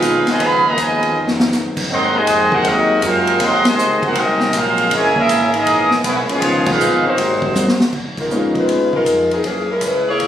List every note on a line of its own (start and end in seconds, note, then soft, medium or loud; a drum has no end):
0.00 0.25 B1 loud
0.00 1.87 C#3 medium
0.00 1.87 D#3 medium
0.00 0.26 G#3 medium
0.00 0.27 B3 medium
0.00 1.87 B3 medium
0.00 0.29 D#4 medium
0.00 1.87 D#4 medium
0.00 0.27 F4 medium
0.00 0.28 G#4 medium
0.00 0.28 B4 loud
0.00 0.28 F5 loud
0.00 kick soft
0.00 hi-hat pedal medium
0.00 ride medium
0.27 0.39 B2 medium
0.27 0.39 F3 medium
0.27 0.39 G#3 medium
0.27 0.41 F4 medium
0.27 snare medium
0.27 ride medium
0.31 0.41 B4 medium
0.31 0.41 D#5 medium
0.31 0.41 G#5 loud
0.40 0.76 C#2 loud
0.40 0.65 F3 medium
0.40 0.65 G#3 loud
0.40 0.64 B3 loud
0.40 kick soft
0.40 ride medium
0.44 0.67 G#4 medium
0.44 0.67 D#5 medium
0.44 0.66 F5 loud
0.44 0.66 B5 loud
0.65 0.78 A#3 medium
0.65 0.79 F#4 medium
0.65 0.79 B4 medium
0.65 0.79 D#5 loud
0.65 0.79 A#5 loud
0.77 1.14 D#2 loud
0.77 1.15 B2 medium
0.77 1.15 F3 medium
0.77 1.16 G#3 medium
0.77 1.17 F4 medium
0.77 1.17 B4 medium
0.77 kick soft
0.77 hi-hat pedal medium
0.77 ride medium
0.81 1.17 D#5 medium
0.81 1.17 G#5 medium
1.03 ride medium
1.14 1.51 F2 medium
1.27 snare medium
1.40 snare loud
1.52 1.89 F#2 medium
1.52 snare medium
1.52 hi-hat pedal medium
1.77 kick medium
1.77 crash loud
1.89 2.26 G#2 loud
1.89 4.88 C3 medium
1.89 2.13 D#3 loud
1.89 2.13 F#3 loud
1.89 6.38 G#3 medium
1.89 6.38 A#3 medium
1.89 2.13 C4 loud
1.89 6.38 G#4 medium
1.89 2.14 A#4 loud
1.89 2.14 D#5 loud
1.89 2.14 F#5 medium
1.89 2.14 C6 loud
1.89 kick soft
2.15 2.52 C3 loud
2.15 2.53 D#3 medium
2.15 2.53 G#3 loud
2.15 2.53 F#4 loud
2.15 2.53 C5 medium
2.15 2.53 D#5 medium
2.15 2.53 G#5 loud
2.27 2.64 F2 medium
2.27 kick soft
2.27 hi-hat pedal medium
2.27 ride medium
2.52 2.63 C4 medium
2.52 2.64 D#4 medium
2.52 2.66 D#4 medium
2.52 2.65 F#4 medium
2.52 2.66 A#4 medium
2.52 2.66 C5 medium
2.52 2.66 F#5 loud
2.52 kick medium
2.64 3.01 D#2 medium
2.64 3.02 F#3 medium
2.64 3.02 C4 medium
2.64 3.04 C4 medium
2.64 3.03 D#4 medium
2.64 kick soft
2.64 ride medium
2.68 3.05 F#4 medium
2.68 3.04 A#4 medium
2.68 3.05 D#5 loud
3.02 3.39 F#2 loud
3.02 3.38 F#3 medium
3.02 3.38 C4 medium
3.02 3.40 D#4 medium
3.02 3.38 F4 medium
3.02 3.39 A#4 medium
3.02 3.40 C5 medium
3.02 kick soft
3.02 hi-hat pedal medium
3.02 ride medium
3.06 3.40 F5 medium
3.27 ride medium
3.40 3.63 D#2 loud
3.40 3.65 D#3 loud
3.40 3.65 F#3 medium
3.40 3.65 C4 medium
3.40 3.67 A#4 medium
3.40 3.67 D#5 medium
3.40 3.67 F#5 medium
3.40 3.66 C6 loud
3.40 kick soft
3.40 ride medium
3.65 4.01 C3 medium
3.65 4.01 D#3 medium
3.65 4.00 G#3 medium
3.65 4.02 F#4 medium
3.65 4.02 C5 loud
3.65 4.02 D#5 medium
3.65 4.02 G#5 loud
3.65 muted upright bass stroke soft
3.65 snare medium
3.65 ride medium
3.77 4.14 C#2 medium
3.77 hi-hat pedal medium
4.02 4.14 C4 medium
4.02 4.15 D#4 medium
4.02 4.17 D#4 medium
4.02 4.15 F#4 medium
4.02 4.17 A#4 medium
4.02 4.17 C5 medium
4.02 4.17 F#5 loud
4.02 kick medium
4.02 ride medium
4.15 4.52 C2 medium
4.15 4.52 F#3 medium
4.15 4.52 C4 medium
4.15 4.55 C4 medium
4.15 4.54 D#4 medium
4.15 4.55 F#4 medium
4.15 4.55 A#4 medium
4.15 4.55 D#5 loud
4.15 kick soft
4.15 ride medium
4.40 snare soft
4.53 4.90 A#1 loud
4.53 4.91 F#3 medium
4.53 4.91 C4 medium
4.53 4.93 D#4 medium
4.53 4.91 F4 medium
4.53 4.93 A#4 medium
4.53 4.93 C5 medium
4.53 4.93 F5 loud
4.53 kick soft
4.53 hi-hat pedal medium
4.53 ride medium
4.78 ride medium
4.90 5.27 F#1 loud
4.90 5.14 C#3 medium
4.90 6.40 E3 medium
4.90 5.14 E3 medium
4.90 5.14 G#3 medium
4.90 kick soft
4.90 ride medium
4.95 5.16 E4 medium
4.95 5.16 A#4 medium
4.95 5.16 C#5 medium
4.95 5.16 G#5 loud
5.15 5.50 A#3 medium
5.15 5.50 C#4 medium
5.15 5.52 C#4 medium
5.15 5.51 E4 medium
5.15 5.52 A#4 medium
5.15 kick medium
5.19 5.53 G#4 medium
5.19 5.53 E5 loud
5.29 5.65 G#1 loud
5.29 kick soft
5.29 hi-hat pedal medium
5.29 ride medium
5.54 5.91 E3 medium
5.54 5.91 A#3 medium
5.54 5.93 C#4 medium
5.54 5.91 D#4 medium
5.54 5.93 G#4 loud
5.54 5.93 A#4 medium
5.54 5.93 D#5 loud
5.54 ride medium
5.66 6.03 A#1 medium
5.66 kick soft
5.66 ride medium
5.91 snare soft
6.04 6.27 B1 loud
6.04 6.15 B3 medium
6.04 6.18 C#4 medium
6.04 kick soft
6.04 hi-hat pedal medium
6.04 ride medium
6.08 6.18 G#3 medium
6.08 6.18 E4 medium
6.08 6.18 B4 medium
6.29 6.64 F3 medium
6.29 6.64 G#3 medium
6.29 6.65 B3 medium
6.29 6.64 C#4 medium
6.29 6.66 F4 medium
6.29 6.65 G#4 medium
6.29 6.65 C#5 medium
6.29 muted upright bass stroke soft
6.29 ride medium
6.41 6.78 C#2 medium
6.41 7.16 D#3 medium
6.41 7.17 B3 medium
6.41 7.16 C#4 medium
6.41 7.16 F4 medium
6.41 kick soft
6.41 ride medium
6.66 7.04 G#3 medium
6.66 7.04 B3 medium
6.66 7.06 D#4 medium
6.66 7.04 F4 medium
6.66 7.06 G#4 medium
6.66 7.06 B4 medium
6.66 7.06 F5 loud
6.66 kick loud
6.66 crash medium
6.79 7.02 A#1 medium
6.79 hi-hat pedal medium
7.04 7.76 D#3 medium
7.04 7.76 F#3 medium
7.04 7.77 A#3 medium
7.04 7.75 C4 medium
7.04 7.77 D#4 medium
7.04 7.77 F#4 medium
7.04 7.77 C5 medium
7.04 muted upright bass stroke soft
7.16 7.53 G#1 medium
7.16 7.91 C3 medium
7.16 7.91 G#3 medium
7.16 7.91 A#3 medium
7.16 7.91 F#4 medium
7.16 kick soft
7.16 ride medium
7.42 kick medium
7.54 7.91 D#2 loud
7.54 hi-hat pedal medium
7.54 high tom medium
7.68 snare medium
7.80 snare loud
7.93 8.05 C#2 medium
7.93 kick medium
7.93 crash medium
8.05 8.17 B1 medium
8.17 8.29 G#1 medium
8.17 8.54 G#3 medium
8.17 8.54 D#4 medium
8.17 8.54 F4 medium
8.17 8.54 A#4 medium
8.17 kick medium
8.17 crash medium
8.30 8.67 F2 medium
8.30 8.88 G#3 medium
8.30 8.88 B3 medium
8.30 8.88 C#4 medium
8.30 8.88 D#4 medium
8.30 8.89 F4 medium
8.30 hi-hat pedal medium
8.55 8.95 G#3 medium
8.55 8.95 F4 medium
8.55 kick medium
8.55 ride soft
8.59 8.95 D#4 medium
8.59 8.95 B4 medium
8.68 8.82 D#2 medium
8.68 kick soft
8.68 ride medium
8.81 8.93 C#2 medium
8.93 9.05 B1 medium
8.93 9.30 G#3 medium
8.93 9.30 D#4 medium
8.93 9.30 F4 medium
8.93 9.30 A#4 medium
8.93 kick medium
9.06 9.42 F2 medium
9.06 kick soft
9.06 hi-hat pedal medium
9.06 ride medium
9.31 9.44 F3 medium
9.31 9.44 B3 medium
9.31 9.45 D#4 medium
9.31 9.44 G#4 medium
9.31 ride soft
9.44 9.80 F#2 medium
9.44 9.68 E3 medium
9.44 9.69 A#3 medium
9.44 9.68 C#4 medium
9.44 9.68 G#4 medium
9.44 kick soft
9.44 ride medium
9.72 9.82 G#3 medium
9.72 9.82 C#4 medium
9.72 9.82 E4 medium
9.72 9.82 A#4 medium
9.81 10.18 C#2 medium
9.81 10.08 G#3 medium
9.81 10.07 C#4 medium
9.81 10.08 E4 medium
9.81 10.08 B4 medium
9.81 kick soft
9.81 hi-hat pedal medium
9.81 ride medium
10.09 10.27 A#3 medium
10.09 10.27 E4 medium
10.09 10.27 G#4 medium
10.09 10.27 C#5 medium
10.19 10.27 A#1 medium
10.19 kick soft
10.19 ride medium